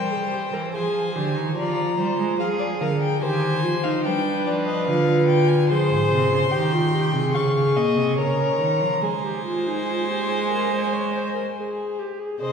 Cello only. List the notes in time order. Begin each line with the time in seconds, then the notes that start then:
Already playing: G3
0.54 E3
0.75 F3
1.15 D3
1.36 D#3
1.56 F3
1.98 G3
2.18 G#3
2.39 F3
2.81 D3
3.21 D#3
3.63 F3
4.05 G3
4.46 F3
4.88 D3
5.70 F3
5.91 G#2
6.12 C3
6.32 C#3
6.52 D#3
7.14 C3
7.35 C#3
7.76 A#2
7.96 C3
8.17 C#3
8.59 D#3
8.80 F3
9.01 G#3
12.41 C3